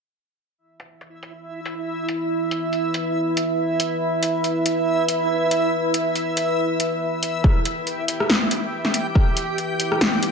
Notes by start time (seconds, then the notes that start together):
0.58 E4 B4 E5
0.80 closed hi-hat
1.01 closed hi-hat
1.23 closed hi-hat
1.66 closed hi-hat
2.09 closed hi-hat
2.51 closed hi-hat
2.73 closed hi-hat
2.94 closed hi-hat
3.37 closed hi-hat
3.80 closed hi-hat
4.23 closed hi-hat
4.44 closed hi-hat
4.66 closed hi-hat
5.08 closed hi-hat
5.51 closed hi-hat
5.94 closed hi-hat
6.16 closed hi-hat
6.37 closed hi-hat
6.80 closed hi-hat
7.23 closed hi-hat
7.44 E4 G4 B4 E5 G5, kick, cross-stick
7.65 closed hi-hat
7.87 closed hi-hat
8.08 closed hi-hat
8.20 cross-stick
8.30 snare
8.51 closed hi-hat
8.85 snare
8.94 closed hi-hat
9.15 kick, cross-stick
9.37 closed hi-hat
9.58 closed hi-hat
9.80 closed hi-hat
9.92 cross-stick
10.01 snare
10.23 closed hi-hat